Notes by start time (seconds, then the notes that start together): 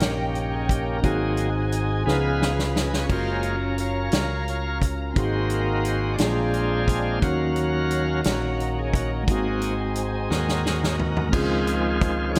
Already playing: G2 C#4 D#4 G4 A#4 D#5 G5
0.00 A#1 A#3 C#4 G4, snare, closed hi-hat
0.35 closed hi-hat
0.53 G#4
0.69 G4, kick, closed hi-hat
0.97 A#4
1.02 G#1 G#2 F#3 A#3 C4 D#4 F#4 G#4 C5 F#5 G#5, kick, closed hi-hat
1.06 G#4
1.37 closed hi-hat
1.72 closed hi-hat
2.05 C#2 C#3 F3 B3 C#4 D#4 G#4 B4 F5 B5, snare
2.13 F4
2.42 snare
2.59 snare
2.76 D#5, snare
2.93 snare
3.04 C#4 C#5
3.09 F#1 G#3 A#3 C#4 F4 F#4 C5 F5 A#5, kick, crash
3.14 A#4
3.43 closed hi-hat
3.47 A#4
3.78 A#4 C#5 F5, closed hi-hat
4.12 C#2, snare, closed hi-hat
4.48 C#5, closed hi-hat
4.82 A#4, kick, closed hi-hat
5.14 G#1 G#2 A#3 C4 D#4 F#4 G#4 G#5, kick, closed hi-hat
5.18 C4 D#4 F#4 C5 D#5 C6
5.50 closed hi-hat
5.54 A#4
5.85 C5, closed hi-hat
6.14 A#3 D5
6.18 A#1 A#2 G#3 C4 D4 F4 G#4 D5 F5 A#5, snare, closed hi-hat
6.22 D4 C5
6.54 closed hi-hat
6.88 kick, closed hi-hat
7.19 D#2 D#3 F#3 A#3 C#4 F#4 C#5 F5 A#5, kick, closed hi-hat
7.23 D#4 F#4 A#4 D#5
7.27 F#4
7.56 closed hi-hat
7.91 closed hi-hat
8.24 A#1 A#3 C#4 F#4, snare, closed hi-hat
8.60 closed hi-hat
8.79 G#4
8.94 F#4, kick, closed hi-hat
9.23 G#2 G#3 B3
9.28 G#1 A#3 C4 D#4 F#4 G#4 C5 G#5, kick, closed hi-hat
9.33 C4
9.62 closed hi-hat
9.95 closed hi-hat
10.30 D#2 D#4 F#4 A#4, snare
10.49 snare
10.66 snare
10.84 snare
10.99 floor tom
11.17 floor tom
11.26 G#3 A#4
11.31 C#2 C#3 D#3 F3 G#3 C4 C#4 F4 G#4 C5, kick, crash
11.36 G#4
11.67 closed hi-hat
12.01 kick, closed hi-hat
12.29 C#5
12.35 F4 G#4, closed hi-hat